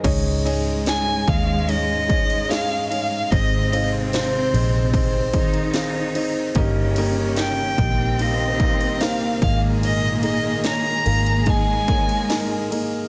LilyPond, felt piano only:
<<
  \new Staff \with { instrumentName = "Felt piano" } { \time 4/4 \key aes \major \tempo 4 = 74 <des' ees' aes' des'' ees''>8 <des' ees' aes' des'' ees''>8 <des' ees' aes' des'' ees''>8 <des' ees' aes' des'' ees''>8 <des' ees' aes' des'' f''>8 <des' ees' aes' des'' ees''>8 <des' ees' aes' des'' ees''>8 <des' ees' aes' des'' f''>8 | <c' ees' aes' c'' ees''>8 <c' ees' aes' c'' f''>8 <c' ees' aes' c'' f''>8 <c' ees' aes' c'' ees''>8 <c' ees' aes' c'' ees''>8 <c' ees' aes' c'' ees''>8 <c' ees' aes' c'' f''>8 <c' ees' aes' c'' ees''>8 | <bes ees' g' bes' ees''>8 <bes ees' g' bes' ees''>8 <bes ees' g' bes' ees''>8 <bes ees' g' bes' ees''>8 <bes ees' g' bes' f''>8 <bes ees' g' bes' f''>8 <bes ees' g' bes' c''>8 <bes ees' aes' bes' ees''>8~ | <bes ees' aes' bes' ees''>8 <bes ees' aes' bes' ees''>8 <bes ees' aes' bes' des''>8 <bes ees' aes' bes' f''>8 <bes ees' aes' bes' ees''>8 <bes ees' aes' bes' des''>8 <bes ees' aes' bes' ees''>8 <bes ees' aes' bes' ees''>8 | }
  \new Staff \with { instrumentName = "Felt piano" } { \clef bass \time 4/4 \key aes \major aes,4. r2 r8 | <aes, ees>4. r2 r8 | <g, g>4. r2 <aes, ees>8~ | <aes, ees>4 r2. | }
>>